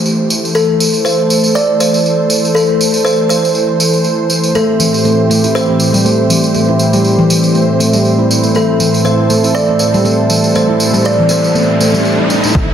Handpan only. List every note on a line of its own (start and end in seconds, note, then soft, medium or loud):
4.55 4.63 A3 medium
4.80 4.93 E3 medium
5.05 5.18 A3 medium
5.30 5.38 A3 medium
5.44 5.54 E4 medium
5.69 5.79 C4 medium
5.93 6.00 G3 loud
6.05 6.18 A3 medium
6.30 6.37 E3 medium
6.55 6.68 A3 medium
6.69 6.79 E4 medium
6.93 7.00 G3 medium
7.19 7.29 E3 medium
7.30 7.38 E3 medium
7.55 7.68 A3 medium
7.80 7.92 A3 loud
7.94 8.00 G3 loud
8.19 8.29 E4 medium
8.44 8.50 A3 medium
8.55 8.63 A3 medium
8.80 8.93 E3 medium
9.05 9.18 A3 medium
9.30 9.38 A3 loud
9.44 9.54 E4 medium
9.69 9.79 C4 medium
9.94 10.00 G3 loud
10.05 10.18 A3 medium
10.30 10.38 E3 medium
10.55 10.68 A3 medium
10.69 10.79 E4 medium
10.94 11.00 G3 loud
11.19 11.29 E3 loud
11.30 11.38 E3 medium
11.55 11.68 A3 medium
11.80 11.93 A3 medium
11.94 12.00 G3 loud
12.18 12.29 E4 medium
12.44 12.50 A3 medium